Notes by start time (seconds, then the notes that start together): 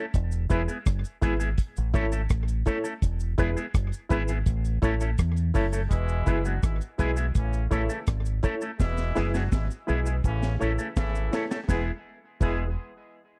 0.14 E1, kick, closed hi-hat, cabasa
0.32 cabasa
0.50 E1 G#3 B3 E4 G#4 B4, kick, closed hi-hat, cabasa
0.68 G#3 B3 E4 G#4, cabasa
0.86 F#1, kick, cross-stick, closed hi-hat, cabasa
1.04 closed hi-hat, cabasa
1.22 G#1 G#3 B3 E4 G#4 B4, kick, cross-stick, closed hi-hat, cabasa
1.40 G#3 B3 E4 G#4, closed hi-hat, cabasa
1.58 kick, closed hi-hat, cabasa
1.76 A1, closed hi-hat, cabasa
1.94 G#1 A3 C#4 E4 A4 C#5, kick, closed hi-hat, cabasa
2.12 A3 C#4 E4 A4, closed hi-hat, cabasa
2.29 A1, kick, cross-stick, closed hi-hat, cabasa
2.48 closed hi-hat, cabasa
2.66 A3 C#4 E4 A4 C#5, kick, closed hi-hat, cabasa
2.84 A3 C#4 E4 A4, cabasa
3.02 E1, kick, closed hi-hat, cabasa
3.20 cabasa
3.38 E1 G#3 B3 E4 G#4 B4, kick, closed hi-hat, cabasa
3.57 G#3 B3 E4 G#4, cabasa
3.74 F#1, kick, cross-stick, closed hi-hat, cabasa
3.92 closed hi-hat, cabasa
4.10 G#1 G#3 B3 E4 G#4 B4, kick, closed hi-hat, cabasa
4.28 G#3 B3 E4 G#4, closed hi-hat, cabasa
4.46 A1, kick, closed hi-hat, cabasa
4.65 closed hi-hat, cabasa
4.82 A1 A3 C#4 E4 A4 C#5, kick, closed hi-hat, cabasa
5.01 A3 C#4 E4 A4, closed hi-hat, cabasa
5.18 E2, kick, cross-stick, closed hi-hat, cabasa
5.37 closed hi-hat, cabasa
5.54 F#1 A3 C#4 E4 A4 C#5, kick, open hi-hat, cabasa
5.72 A3 C#4 E4 A4 C#5, cabasa
5.90 E1 B2 E3 G#3 E4, kick, closed hi-hat, cabasa
6.08 cabasa
6.26 F#1 G#3 B3 E4 G#4 B4, kick, closed hi-hat, cabasa
6.45 F#3 G#3 B3 D4 E4 F#4 G#4, cabasa
6.62 G#1 B2 E3 G#3 E4, kick, cross-stick, closed hi-hat, cabasa
6.81 closed hi-hat, cabasa
6.98 B1 B2 E3 G#3 B3 E4 G#4 B4, kick, closed hi-hat, cabasa
7.16 G#3 B3 E4 G#4, closed hi-hat, cabasa
7.34 A1 A2 C#3 E3 C#4, kick, closed hi-hat, cabasa
7.53 closed hi-hat, cabasa
7.71 A1 C#3 E3 A3 C#4 E4 A4 C#5, kick, closed hi-hat, cabasa
7.89 A3 C#4 E4 A4, closed hi-hat, cabasa
8.07 G#1, kick, cross-stick, closed hi-hat, cabasa
8.25 closed hi-hat, cabasa
8.43 A3 C#4 E4 A4 C#5, kick, closed hi-hat, cabasa
8.61 A3 C#4 E4 A4, cabasa
8.79 E1 B2 E3 G#3 E4, kick, snare, cabasa
8.98 snare, cabasa
9.16 F#1 G#3 B3 E4 G#4 B4, snare, cabasa
9.33 F#3 G#3 B3 D4 E4 F#4 G#4, snare, cabasa
9.51 G#1 B2 E3 G#3 E4, kick, snare, cabasa
9.71 cabasa
9.87 B1 B2 E3 G#3 B3 E4 G#4 B4, cabasa
10.06 G#3 B3 E4 G#4, cabasa
10.24 A1 A2 C#3 E3 C#4, kick, cabasa
10.43 snare, cabasa
10.59 A1 C#3 E3 A3 C#4 E4 A4 C#5, cabasa
10.79 A3 C#4 E4 A4, cabasa
10.96 G#1 C#3 E3 A3 E4, kick, snare, cabasa
11.15 cabasa
11.31 A3 C#4 E4 A4 C#5, snare, cabasa
11.50 A3 C#4 E4 A4 C#5, snare, cabasa
11.68 E1 E3 G#3 B3 E4 G#4 B4, kick, snare, cabasa
12.40 E1 E3 G#3 B3 E4 G#4 B4, kick, crash, cabasa